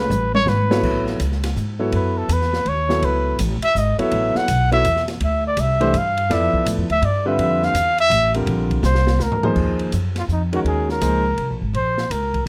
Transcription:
0.00 B4
0.10 A1, hi-hat pedal, high tom
0.35 C#5, high tom
0.46 G#1 B4, snare
0.70 F#3 B3 E4 A4 C#5, snare
0.83 A1, kick, crash
1.06 snare
1.19 C#2, hi-hat pedal, ride
1.32 snare
1.44 snare, ride
1.56 G#2, hi-hat pedal
1.79 F#3 B3 E4 A4 C#5
1.92 F#2 B4, ride
2.18 A4
2.28 E2, hi-hat pedal, ride
2.33 B4
2.41 snare
2.53 snare
2.65 D#2 C#5, ride
2.89 F#3 B3 E4 A4 C#5, snare
3.02 C#2 B4, ride
3.39 A1, hi-hat pedal, ride
3.62 E5, muted upright bass stroke, ride
3.75 G#1 D#5, hi-hat pedal
3.98 F#3 B3 E4 A4 C#5 E5, muted upright bass stroke, ride
4.11 A1, ride
4.35 F#5, muted upright bass stroke, snare
4.48 B1, hi-hat pedal, ride
4.72 F#3 B3 E4 A4 C#5 E5, ride
4.84 E2, hi-hat pedal, ride
4.96 snare
5.08 snare, ride
5.20 D2 E5, ride
5.47 D5
5.57 C2 E5, hi-hat pedal, ride
5.80 E3 A3 D4 G4 C5, ride
5.94 G2 F5, hi-hat pedal, ride
6.17 ride
6.30 F2 F3 B3 E4 A4 D5 E5, snare, ride
6.53 muted upright bass stroke, kick
6.65 A2, hi-hat pedal, ride
6.77 F2
6.90 D2 E5, ride
7.02 G2 D5, ride
7.25 D3 G3 C4 F4 B4 E5
7.38 F2, ride
7.63 F5, snare
7.74 E2, hi-hat pedal, ride
7.98 E5, ride
8.10 A1, hi-hat pedal, ride
8.34 D3 G3 C4 F4 A#4, ride
8.46 A#1, ride
8.70 kick, ride
8.83 C2 C5, snare, hi-hat pedal
8.95 snare
9.07 snare
9.19 D2 A#4, snare, hi-hat pedal
9.32 floor tom
9.43 F3 A#3 D#4 G#4 C5, floor tom
9.56 D#2, kick, crash
9.79 ride
9.92 F#2, hi-hat pedal, ride
10.16 F4, snare, ride
10.28 F2, hi-hat pedal
10.33 D#4
10.53 D#3 G#3 C#4 F#4 A#4, ride
10.64 D#2 G#4, ride
10.89 A#4, snare
11.01 C#2 F3 A#3 D#4 G#4 C5, hi-hat pedal, ride
11.38 C2, ride
11.50 A#1
11.62 G#1
11.73 A#1 C5, ride
11.98 snare
12.10 C#2 A#4, hi-hat pedal, ride
12.34 kick, ride

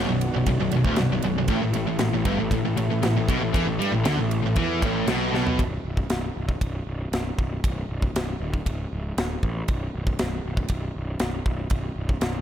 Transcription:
Already playing: B3 F#4 C#5 D5
0.07 B0
0.12 B1
0.21 ride
0.33 B0 B1
0.46 B0 B1, kick, ride
0.59 B0 B1
0.71 B0, ride
0.76 B1
0.85 D1 D2, kick
0.96 B0, snare, ride
1.00 B1
1.10 B0 B1
1.22 B0 B1, ride
1.34 B0
1.38 B1
1.48 A1 A2 A3 E4 A4, kick, ride
1.60 A1 A2
1.72 A1 A2, ride
1.85 A1 A2
1.98 A1 A2, snare, ride
2.10 A1 A2
2.25 G1 G2, kick, ride
2.38 A1 A2
2.51 A1 A2, kick, ride
2.63 A1 A2
2.75 A1 A2, ride
2.89 A1 A2
3.02 A1 A2, snare, ride
3.16 A1 A2
3.29 B1 B2, kick, ride
3.40 A1 A2
3.53 E2 E3, kick, ride
3.65 A1 A2
3.78 G2 G3, ride
3.92 A1 A2
4.04 D2 D3, snare, ride
4.18 A1 A2
4.31 ride
4.42 A1 A2
4.56 E2 E3, kick, ride
4.82 A1 A2, kick, ride
5.07 B1 B2, snare, ride
5.11 B2
5.32 B1 B2, snare
5.36 B2
5.47 floor tom
5.59 B0, kick, ride bell
5.85 B0
5.97 kick
6.10 B0, snare, ride bell
6.37 B0
6.49 kick
6.61 B0, kick, ride bell
6.87 B0
7.12 B0, snare, ride bell
7.39 B0, kick
7.64 B0, kick, ride bell
7.89 B0
8.02 kick
8.15 B0, snare, ride bell
8.40 D1
8.54 kick
8.66 C#1, kick, ride bell
8.93 C#1
9.17 D1, snare, ride bell
9.43 A1, kick
9.68 B0, kick, ride bell
9.96 B0
10.07 kick
10.19 B0, snare, ride bell
10.46 B0
10.57 kick
10.68 B0, kick, ride bell
10.96 B0
11.19 B0, snare, ride bell
11.46 B0, kick
11.70 B0, kick, ride bell
11.96 B0
12.09 kick
12.21 B0, snare, ride bell

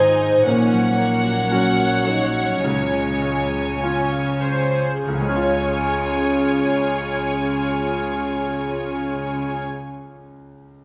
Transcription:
Already playing: G#1 G#2 D#3 G#3 C4 D#4 G#4 C5 D#5 G#5
0.21 D#4
0.45 A#1 A#2 C#4 A#4 C#5 F#5
0.72 F#3
0.97 A#3 C#4
1.24 F#4
1.50 F#3 C#4 F#4 F#5
1.78 C#5
2.06 D#4 F#4
2.33 C#4
2.62 C#2 C#3 G#3 F4 G#5
2.91 C#4
3.21 F4
3.52 C#5
3.80 C#4 F4 G#5
3.84 C#4
4.12 F5
4.42 C5 C#5
4.74 G#4
5.05 C#2 C#3 C#4 F4 G#4 C#5 G#5
5.13 C#3 G#3
5.20 G#3 C#4
5.27 C#4 F4
5.34 F4 C#5
5.43 C#5

